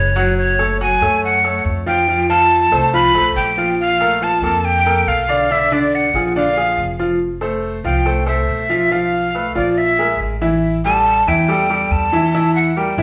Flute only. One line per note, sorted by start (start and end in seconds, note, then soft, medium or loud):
0.00 0.35 C#5 medium
0.38 0.77 C#5 medium
0.82 1.20 G#5 medium
1.24 1.63 F#5 medium
1.88 2.27 G5 loud
2.29 2.89 A5 loud
2.94 3.33 B5 loud
3.36 3.76 G5 medium
3.80 4.25 F5 loud
4.23 4.66 A5 medium
4.65 5.10 G5 loud
5.08 5.53 F5 medium
5.52 5.75 E5 medium
5.73 5.97 D5 medium
5.95 6.36 F#5 medium
6.36 6.96 F5 loud
7.85 8.25 G5 medium
8.28 8.94 E5 medium
8.92 9.55 F5 medium
9.56 9.79 D5 medium
9.78 10.20 E5 medium
10.85 11.30 A5 loud
11.28 11.93 G5 medium
11.92 12.55 A5 medium
12.56 12.79 F#5 medium
12.77 13.03 G5 medium